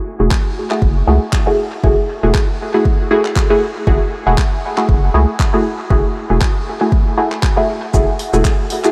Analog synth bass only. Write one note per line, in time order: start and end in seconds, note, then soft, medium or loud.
0.20 0.29 E1 medium
0.82 1.03 F#1 medium
1.07 1.19 C#2 loud
1.84 1.95 F#1 medium
2.23 2.32 E1 medium
3.87 3.98 F#1 medium
4.27 4.36 E1 medium
4.89 5.10 F#1 medium
5.14 5.26 C#2 loud
5.90 6.02 F#1 loud
6.30 6.39 E1 medium
7.94 8.05 F#1 loud
8.33 8.43 E1 medium